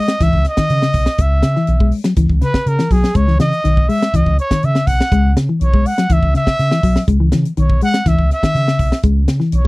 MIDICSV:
0, 0, Header, 1, 7, 480
1, 0, Start_track
1, 0, Key_signature, 4, "minor"
1, 0, Tempo, 490597
1, 1160, Time_signature, 4, 2, 24, 8
1, 9466, End_track
2, 0, Start_track
2, 0, Title_t, "Trumpet"
2, 0, Program_c, 0, 56
2, 0, Note_on_c, 0, 75, 98
2, 223, Note_on_c, 0, 76, 93
2, 237, Note_off_c, 0, 75, 0
2, 451, Note_off_c, 0, 76, 0
2, 470, Note_on_c, 0, 75, 103
2, 1188, Note_on_c, 0, 76, 90
2, 1203, Note_off_c, 0, 75, 0
2, 1896, Note_off_c, 0, 76, 0
2, 2385, Note_on_c, 0, 71, 94
2, 2623, Note_on_c, 0, 70, 80
2, 2638, Note_off_c, 0, 71, 0
2, 2858, Note_on_c, 0, 68, 90
2, 2872, Note_off_c, 0, 70, 0
2, 3095, Note_on_c, 0, 73, 88
2, 3110, Note_off_c, 0, 68, 0
2, 3326, Note_off_c, 0, 73, 0
2, 3332, Note_on_c, 0, 75, 103
2, 3806, Note_on_c, 0, 76, 104
2, 3821, Note_off_c, 0, 75, 0
2, 4071, Note_on_c, 0, 75, 89
2, 4085, Note_off_c, 0, 76, 0
2, 4298, Note_off_c, 0, 75, 0
2, 4303, Note_on_c, 0, 73, 94
2, 4550, Note_on_c, 0, 76, 87
2, 4565, Note_off_c, 0, 73, 0
2, 4764, Note_on_c, 0, 78, 100
2, 4778, Note_off_c, 0, 76, 0
2, 5244, Note_off_c, 0, 78, 0
2, 5502, Note_on_c, 0, 73, 85
2, 5742, Note_on_c, 0, 78, 102
2, 5756, Note_off_c, 0, 73, 0
2, 5994, Note_on_c, 0, 76, 90
2, 6009, Note_off_c, 0, 78, 0
2, 6219, Note_off_c, 0, 76, 0
2, 6226, Note_on_c, 0, 76, 118
2, 6895, Note_off_c, 0, 76, 0
2, 7433, Note_on_c, 0, 73, 73
2, 7642, Note_off_c, 0, 73, 0
2, 7662, Note_on_c, 0, 78, 111
2, 7904, Note_on_c, 0, 76, 92
2, 7918, Note_off_c, 0, 78, 0
2, 8133, Note_off_c, 0, 76, 0
2, 8150, Note_on_c, 0, 76, 115
2, 8816, Note_off_c, 0, 76, 0
2, 9349, Note_on_c, 0, 73, 77
2, 9466, Note_off_c, 0, 73, 0
2, 9466, End_track
3, 0, Start_track
3, 0, Title_t, "Clean electric guitar"
3, 0, Program_c, 1, 27
3, 0, Note_on_c, 1, 56, 74
3, 146, Note_off_c, 1, 56, 0
3, 204, Note_on_c, 1, 52, 85
3, 388, Note_off_c, 1, 52, 0
3, 571, Note_on_c, 1, 51, 66
3, 754, Note_off_c, 1, 51, 0
3, 812, Note_on_c, 1, 49, 70
3, 995, Note_off_c, 1, 49, 0
3, 1530, Note_on_c, 1, 52, 75
3, 1714, Note_off_c, 1, 52, 0
3, 1767, Note_on_c, 1, 56, 68
3, 1952, Note_off_c, 1, 56, 0
3, 2005, Note_on_c, 1, 54, 72
3, 2095, Note_off_c, 1, 54, 0
3, 2122, Note_on_c, 1, 52, 84
3, 2308, Note_off_c, 1, 52, 0
3, 2362, Note_on_c, 1, 49, 77
3, 2548, Note_off_c, 1, 49, 0
3, 2732, Note_on_c, 1, 52, 68
3, 2820, Note_off_c, 1, 52, 0
3, 2854, Note_on_c, 1, 54, 76
3, 3036, Note_off_c, 1, 54, 0
3, 3087, Note_on_c, 1, 56, 90
3, 3181, Note_off_c, 1, 56, 0
3, 3208, Note_on_c, 1, 52, 69
3, 3298, Note_off_c, 1, 52, 0
3, 3319, Note_on_c, 1, 52, 72
3, 3506, Note_off_c, 1, 52, 0
3, 3562, Note_on_c, 1, 51, 76
3, 3749, Note_off_c, 1, 51, 0
3, 3805, Note_on_c, 1, 56, 79
3, 3990, Note_off_c, 1, 56, 0
3, 4054, Note_on_c, 1, 52, 88
3, 4235, Note_off_c, 1, 52, 0
3, 4415, Note_on_c, 1, 51, 67
3, 4598, Note_off_c, 1, 51, 0
3, 4654, Note_on_c, 1, 49, 68
3, 4837, Note_off_c, 1, 49, 0
3, 5011, Note_on_c, 1, 56, 98
3, 5194, Note_off_c, 1, 56, 0
3, 5373, Note_on_c, 1, 52, 69
3, 5556, Note_off_c, 1, 52, 0
3, 5612, Note_on_c, 1, 56, 68
3, 5795, Note_off_c, 1, 56, 0
3, 5854, Note_on_c, 1, 54, 69
3, 5941, Note_off_c, 1, 54, 0
3, 5969, Note_on_c, 1, 52, 85
3, 6152, Note_off_c, 1, 52, 0
3, 6206, Note_on_c, 1, 49, 72
3, 6391, Note_off_c, 1, 49, 0
3, 6570, Note_on_c, 1, 52, 72
3, 6658, Note_off_c, 1, 52, 0
3, 6685, Note_on_c, 1, 54, 74
3, 6870, Note_off_c, 1, 54, 0
3, 6925, Note_on_c, 1, 56, 90
3, 7020, Note_off_c, 1, 56, 0
3, 7046, Note_on_c, 1, 52, 73
3, 7136, Note_off_c, 1, 52, 0
3, 7168, Note_on_c, 1, 52, 76
3, 7351, Note_off_c, 1, 52, 0
3, 7410, Note_on_c, 1, 51, 79
3, 7592, Note_off_c, 1, 51, 0
3, 7654, Note_on_c, 1, 56, 79
3, 7835, Note_off_c, 1, 56, 0
3, 7884, Note_on_c, 1, 52, 88
3, 8068, Note_off_c, 1, 52, 0
3, 8246, Note_on_c, 1, 51, 70
3, 8430, Note_off_c, 1, 51, 0
3, 8488, Note_on_c, 1, 49, 72
3, 8672, Note_off_c, 1, 49, 0
3, 8840, Note_on_c, 1, 56, 96
3, 9025, Note_off_c, 1, 56, 0
3, 9194, Note_on_c, 1, 52, 76
3, 9382, Note_off_c, 1, 52, 0
3, 9466, End_track
4, 0, Start_track
4, 0, Title_t, "Fingered electric bass"
4, 0, Program_c, 2, 33
4, 201, Note_on_c, 2, 37, 92
4, 309, Note_off_c, 2, 37, 0
4, 322, Note_on_c, 2, 37, 80
4, 425, Note_off_c, 2, 37, 0
4, 683, Note_on_c, 2, 49, 84
4, 791, Note_off_c, 2, 49, 0
4, 918, Note_on_c, 2, 35, 82
4, 1028, Note_off_c, 2, 35, 0
4, 1160, Note_on_c, 2, 37, 87
4, 1373, Note_off_c, 2, 37, 0
4, 1403, Note_on_c, 2, 49, 84
4, 1511, Note_off_c, 2, 49, 0
4, 1644, Note_on_c, 2, 35, 87
4, 1855, Note_off_c, 2, 35, 0
4, 2124, Note_on_c, 2, 37, 88
4, 2233, Note_off_c, 2, 37, 0
4, 2246, Note_on_c, 2, 37, 81
4, 2349, Note_off_c, 2, 37, 0
4, 2604, Note_on_c, 2, 49, 87
4, 2713, Note_off_c, 2, 49, 0
4, 2848, Note_on_c, 2, 35, 80
4, 2955, Note_off_c, 2, 35, 0
4, 3081, Note_on_c, 2, 37, 93
4, 3295, Note_off_c, 2, 37, 0
4, 3325, Note_on_c, 2, 49, 82
4, 3434, Note_off_c, 2, 49, 0
4, 3566, Note_on_c, 2, 35, 90
4, 3777, Note_off_c, 2, 35, 0
4, 4046, Note_on_c, 2, 37, 86
4, 4155, Note_off_c, 2, 37, 0
4, 4171, Note_on_c, 2, 37, 81
4, 4273, Note_off_c, 2, 37, 0
4, 4535, Note_on_c, 2, 49, 85
4, 4640, Note_off_c, 2, 49, 0
4, 4767, Note_on_c, 2, 35, 78
4, 4875, Note_off_c, 2, 35, 0
4, 5007, Note_on_c, 2, 37, 87
4, 5218, Note_off_c, 2, 37, 0
4, 5248, Note_on_c, 2, 49, 84
4, 5355, Note_off_c, 2, 49, 0
4, 5487, Note_on_c, 2, 35, 89
4, 5698, Note_off_c, 2, 35, 0
4, 5969, Note_on_c, 2, 37, 92
4, 6076, Note_off_c, 2, 37, 0
4, 6092, Note_on_c, 2, 37, 79
4, 6193, Note_off_c, 2, 37, 0
4, 6450, Note_on_c, 2, 49, 83
4, 6556, Note_off_c, 2, 49, 0
4, 6684, Note_on_c, 2, 35, 79
4, 6793, Note_off_c, 2, 35, 0
4, 6926, Note_on_c, 2, 37, 89
4, 7136, Note_off_c, 2, 37, 0
4, 7171, Note_on_c, 2, 49, 85
4, 7276, Note_off_c, 2, 49, 0
4, 7410, Note_on_c, 2, 35, 97
4, 7619, Note_off_c, 2, 35, 0
4, 7884, Note_on_c, 2, 37, 95
4, 7992, Note_off_c, 2, 37, 0
4, 8009, Note_on_c, 2, 37, 82
4, 8110, Note_off_c, 2, 37, 0
4, 8361, Note_on_c, 2, 49, 90
4, 8470, Note_off_c, 2, 49, 0
4, 8601, Note_on_c, 2, 35, 83
4, 8710, Note_off_c, 2, 35, 0
4, 8842, Note_on_c, 2, 37, 91
4, 9053, Note_off_c, 2, 37, 0
4, 9074, Note_on_c, 2, 49, 82
4, 9186, Note_off_c, 2, 49, 0
4, 9320, Note_on_c, 2, 35, 93
4, 9466, Note_off_c, 2, 35, 0
4, 9466, End_track
5, 0, Start_track
5, 0, Title_t, "Muted clean electric guitar strokes"
5, 1163, Note_on_c, 9, 29, 96
5, 1261, Note_off_c, 9, 29, 0
5, 9466, End_track
6, 0, Start_track
6, 0, Title_t, "Muted fingered electric bass strokes"
6, 565, Note_on_c, 9, 29, 39
6, 663, Note_off_c, 9, 29, 0
6, 1042, Note_on_c, 9, 29, 35
6, 1140, Note_off_c, 9, 29, 0
6, 2487, Note_on_c, 9, 29, 36
6, 2584, Note_off_c, 9, 29, 0
6, 2968, Note_on_c, 9, 29, 36
6, 3066, Note_off_c, 9, 29, 0
6, 4410, Note_on_c, 9, 29, 35
6, 4508, Note_off_c, 9, 29, 0
6, 4893, Note_on_c, 9, 29, 36
6, 4991, Note_off_c, 9, 29, 0
6, 6332, Note_on_c, 9, 29, 37
6, 6429, Note_off_c, 9, 29, 0
6, 6810, Note_on_c, 9, 29, 36
6, 6908, Note_off_c, 9, 29, 0
6, 8250, Note_on_c, 9, 29, 39
6, 8348, Note_off_c, 9, 29, 0
6, 8723, Note_on_c, 9, 29, 37
6, 8821, Note_off_c, 9, 29, 0
6, 9466, End_track
7, 0, Start_track
7, 0, Title_t, "Drums"
7, 80, Note_on_c, 9, 38, 67
7, 80, Note_on_c, 9, 42, 50
7, 177, Note_off_c, 9, 38, 0
7, 177, Note_off_c, 9, 42, 0
7, 198, Note_on_c, 9, 38, 29
7, 198, Note_on_c, 9, 42, 67
7, 200, Note_on_c, 9, 36, 70
7, 296, Note_off_c, 9, 38, 0
7, 296, Note_off_c, 9, 42, 0
7, 298, Note_off_c, 9, 36, 0
7, 324, Note_on_c, 9, 36, 61
7, 422, Note_off_c, 9, 36, 0
7, 436, Note_on_c, 9, 38, 26
7, 436, Note_on_c, 9, 42, 44
7, 534, Note_off_c, 9, 38, 0
7, 534, Note_off_c, 9, 42, 0
7, 558, Note_on_c, 9, 38, 72
7, 558, Note_on_c, 9, 42, 50
7, 564, Note_on_c, 9, 36, 61
7, 656, Note_off_c, 9, 38, 0
7, 656, Note_off_c, 9, 42, 0
7, 661, Note_off_c, 9, 36, 0
7, 681, Note_on_c, 9, 42, 68
7, 779, Note_off_c, 9, 42, 0
7, 804, Note_on_c, 9, 38, 64
7, 902, Note_off_c, 9, 38, 0
7, 911, Note_on_c, 9, 46, 61
7, 920, Note_on_c, 9, 36, 66
7, 1009, Note_off_c, 9, 46, 0
7, 1018, Note_off_c, 9, 36, 0
7, 1037, Note_on_c, 9, 38, 72
7, 1135, Note_off_c, 9, 38, 0
7, 1154, Note_on_c, 9, 42, 66
7, 1161, Note_on_c, 9, 36, 88
7, 1252, Note_off_c, 9, 42, 0
7, 1259, Note_off_c, 9, 36, 0
7, 1395, Note_on_c, 9, 38, 76
7, 1395, Note_on_c, 9, 42, 51
7, 1493, Note_off_c, 9, 38, 0
7, 1493, Note_off_c, 9, 42, 0
7, 1524, Note_on_c, 9, 38, 26
7, 1622, Note_off_c, 9, 38, 0
7, 1634, Note_on_c, 9, 42, 68
7, 1732, Note_off_c, 9, 42, 0
7, 1764, Note_on_c, 9, 36, 65
7, 1862, Note_off_c, 9, 36, 0
7, 1874, Note_on_c, 9, 46, 66
7, 1972, Note_off_c, 9, 46, 0
7, 1998, Note_on_c, 9, 38, 68
7, 1998, Note_on_c, 9, 42, 53
7, 2095, Note_off_c, 9, 38, 0
7, 2095, Note_off_c, 9, 42, 0
7, 2117, Note_on_c, 9, 42, 74
7, 2121, Note_on_c, 9, 36, 73
7, 2215, Note_off_c, 9, 42, 0
7, 2219, Note_off_c, 9, 36, 0
7, 2245, Note_on_c, 9, 36, 67
7, 2343, Note_off_c, 9, 36, 0
7, 2361, Note_on_c, 9, 38, 26
7, 2361, Note_on_c, 9, 42, 52
7, 2459, Note_off_c, 9, 38, 0
7, 2459, Note_off_c, 9, 42, 0
7, 2485, Note_on_c, 9, 38, 69
7, 2486, Note_on_c, 9, 36, 63
7, 2583, Note_off_c, 9, 38, 0
7, 2584, Note_off_c, 9, 36, 0
7, 2607, Note_on_c, 9, 42, 72
7, 2705, Note_off_c, 9, 42, 0
7, 2729, Note_on_c, 9, 38, 65
7, 2826, Note_off_c, 9, 38, 0
7, 2844, Note_on_c, 9, 36, 63
7, 2846, Note_on_c, 9, 46, 60
7, 2942, Note_off_c, 9, 36, 0
7, 2944, Note_off_c, 9, 46, 0
7, 2973, Note_on_c, 9, 38, 71
7, 3071, Note_off_c, 9, 38, 0
7, 3079, Note_on_c, 9, 42, 73
7, 3083, Note_on_c, 9, 36, 95
7, 3177, Note_off_c, 9, 42, 0
7, 3181, Note_off_c, 9, 36, 0
7, 3205, Note_on_c, 9, 38, 29
7, 3303, Note_off_c, 9, 38, 0
7, 3324, Note_on_c, 9, 38, 73
7, 3324, Note_on_c, 9, 42, 57
7, 3422, Note_off_c, 9, 38, 0
7, 3422, Note_off_c, 9, 42, 0
7, 3451, Note_on_c, 9, 42, 49
7, 3549, Note_off_c, 9, 42, 0
7, 3569, Note_on_c, 9, 42, 70
7, 3667, Note_off_c, 9, 42, 0
7, 3690, Note_on_c, 9, 36, 63
7, 3788, Note_off_c, 9, 36, 0
7, 3809, Note_on_c, 9, 46, 68
7, 3907, Note_off_c, 9, 46, 0
7, 3938, Note_on_c, 9, 38, 74
7, 3938, Note_on_c, 9, 42, 50
7, 4036, Note_off_c, 9, 38, 0
7, 4036, Note_off_c, 9, 42, 0
7, 4048, Note_on_c, 9, 36, 74
7, 4054, Note_on_c, 9, 42, 68
7, 4146, Note_off_c, 9, 36, 0
7, 4152, Note_off_c, 9, 42, 0
7, 4171, Note_on_c, 9, 36, 62
7, 4269, Note_off_c, 9, 36, 0
7, 4291, Note_on_c, 9, 42, 49
7, 4389, Note_off_c, 9, 42, 0
7, 4411, Note_on_c, 9, 36, 63
7, 4414, Note_on_c, 9, 38, 65
7, 4414, Note_on_c, 9, 42, 51
7, 4509, Note_off_c, 9, 36, 0
7, 4512, Note_off_c, 9, 38, 0
7, 4512, Note_off_c, 9, 42, 0
7, 4528, Note_on_c, 9, 42, 68
7, 4626, Note_off_c, 9, 42, 0
7, 4649, Note_on_c, 9, 38, 64
7, 4747, Note_off_c, 9, 38, 0
7, 4768, Note_on_c, 9, 36, 69
7, 4769, Note_on_c, 9, 46, 63
7, 4865, Note_off_c, 9, 36, 0
7, 4867, Note_off_c, 9, 46, 0
7, 4898, Note_on_c, 9, 38, 74
7, 4996, Note_off_c, 9, 38, 0
7, 5007, Note_on_c, 9, 36, 92
7, 5009, Note_on_c, 9, 42, 67
7, 5105, Note_off_c, 9, 36, 0
7, 5107, Note_off_c, 9, 42, 0
7, 5252, Note_on_c, 9, 38, 78
7, 5252, Note_on_c, 9, 42, 53
7, 5349, Note_off_c, 9, 38, 0
7, 5349, Note_off_c, 9, 42, 0
7, 5487, Note_on_c, 9, 42, 64
7, 5585, Note_off_c, 9, 42, 0
7, 5611, Note_on_c, 9, 36, 67
7, 5709, Note_off_c, 9, 36, 0
7, 5731, Note_on_c, 9, 46, 69
7, 5829, Note_off_c, 9, 46, 0
7, 5851, Note_on_c, 9, 38, 70
7, 5851, Note_on_c, 9, 42, 51
7, 5948, Note_off_c, 9, 38, 0
7, 5948, Note_off_c, 9, 42, 0
7, 5964, Note_on_c, 9, 42, 70
7, 5965, Note_on_c, 9, 36, 67
7, 6061, Note_off_c, 9, 42, 0
7, 6063, Note_off_c, 9, 36, 0
7, 6091, Note_on_c, 9, 36, 64
7, 6189, Note_off_c, 9, 36, 0
7, 6210, Note_on_c, 9, 38, 26
7, 6210, Note_on_c, 9, 42, 50
7, 6308, Note_off_c, 9, 38, 0
7, 6308, Note_off_c, 9, 42, 0
7, 6329, Note_on_c, 9, 38, 69
7, 6330, Note_on_c, 9, 36, 60
7, 6427, Note_off_c, 9, 38, 0
7, 6428, Note_off_c, 9, 36, 0
7, 6449, Note_on_c, 9, 38, 29
7, 6449, Note_on_c, 9, 42, 70
7, 6547, Note_off_c, 9, 38, 0
7, 6547, Note_off_c, 9, 42, 0
7, 6569, Note_on_c, 9, 38, 68
7, 6666, Note_off_c, 9, 38, 0
7, 6685, Note_on_c, 9, 36, 71
7, 6685, Note_on_c, 9, 46, 64
7, 6783, Note_off_c, 9, 36, 0
7, 6783, Note_off_c, 9, 46, 0
7, 6808, Note_on_c, 9, 38, 70
7, 6905, Note_off_c, 9, 38, 0
7, 6924, Note_on_c, 9, 42, 69
7, 6926, Note_on_c, 9, 36, 91
7, 7022, Note_off_c, 9, 42, 0
7, 7023, Note_off_c, 9, 36, 0
7, 7161, Note_on_c, 9, 38, 74
7, 7161, Note_on_c, 9, 42, 58
7, 7259, Note_off_c, 9, 38, 0
7, 7259, Note_off_c, 9, 42, 0
7, 7291, Note_on_c, 9, 42, 55
7, 7389, Note_off_c, 9, 42, 0
7, 7406, Note_on_c, 9, 42, 70
7, 7504, Note_off_c, 9, 42, 0
7, 7529, Note_on_c, 9, 36, 65
7, 7626, Note_off_c, 9, 36, 0
7, 7642, Note_on_c, 9, 46, 68
7, 7740, Note_off_c, 9, 46, 0
7, 7768, Note_on_c, 9, 38, 68
7, 7768, Note_on_c, 9, 42, 52
7, 7866, Note_off_c, 9, 38, 0
7, 7866, Note_off_c, 9, 42, 0
7, 7885, Note_on_c, 9, 36, 73
7, 7885, Note_on_c, 9, 38, 30
7, 7885, Note_on_c, 9, 42, 68
7, 7982, Note_off_c, 9, 38, 0
7, 7982, Note_off_c, 9, 42, 0
7, 7983, Note_off_c, 9, 36, 0
7, 8008, Note_on_c, 9, 36, 62
7, 8106, Note_off_c, 9, 36, 0
7, 8129, Note_on_c, 9, 38, 25
7, 8129, Note_on_c, 9, 42, 52
7, 8227, Note_off_c, 9, 38, 0
7, 8227, Note_off_c, 9, 42, 0
7, 8249, Note_on_c, 9, 36, 62
7, 8253, Note_on_c, 9, 38, 71
7, 8253, Note_on_c, 9, 42, 53
7, 8347, Note_off_c, 9, 36, 0
7, 8351, Note_off_c, 9, 38, 0
7, 8351, Note_off_c, 9, 42, 0
7, 8369, Note_on_c, 9, 42, 69
7, 8467, Note_off_c, 9, 42, 0
7, 8491, Note_on_c, 9, 38, 68
7, 8588, Note_off_c, 9, 38, 0
7, 8600, Note_on_c, 9, 46, 61
7, 8602, Note_on_c, 9, 36, 67
7, 8697, Note_off_c, 9, 46, 0
7, 8700, Note_off_c, 9, 36, 0
7, 8728, Note_on_c, 9, 38, 71
7, 8826, Note_off_c, 9, 38, 0
7, 8835, Note_on_c, 9, 42, 66
7, 8841, Note_on_c, 9, 36, 90
7, 8933, Note_off_c, 9, 42, 0
7, 8938, Note_off_c, 9, 36, 0
7, 9079, Note_on_c, 9, 38, 75
7, 9079, Note_on_c, 9, 42, 51
7, 9177, Note_off_c, 9, 38, 0
7, 9177, Note_off_c, 9, 42, 0
7, 9199, Note_on_c, 9, 38, 27
7, 9297, Note_off_c, 9, 38, 0
7, 9315, Note_on_c, 9, 42, 67
7, 9412, Note_off_c, 9, 42, 0
7, 9466, End_track
0, 0, End_of_file